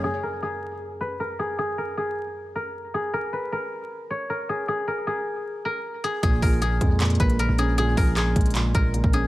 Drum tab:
HH |--------------------------------|--------------------------------|--------------------------------|--------------------------------|
CP |--------------------------------|--------------------------------|--------------------------------|--------------------------------|
BD |--------------------------------|--------------------------------|--------------------------------|--------------------------------|

HH |x---o---x---x---xxxxx-x-x---x---|x---o---x---xxxxx---x---x---x---|
CP |----------------x---------------|--------x-------x---------------|
BD |o---o-------o-------o-----------|----o-------o-------o-----o-----|